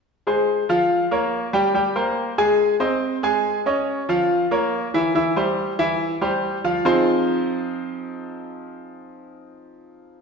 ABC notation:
X:1
M:4/4
L:1/8
Q:1/4=141
K:Fm
V:1 name="Grand piano"
z [A,Ac]2 [F,Ff]2 [B,Bd]2 [G,Gg] | [G,Gg] [B,Bc]2 [A,Aa]2 [Cce]2 [A,Aa]- | [A,Aa] [Dde]2 [F,Ff]2 [B,Bd]2 [=E,=E=e] | [=E,=E=e] [G,Gc]2 [E,Ee]2 [G,Gc]2 [F,Ff] |
[F,CEFAc]8- | [F,CEFAc]8 |]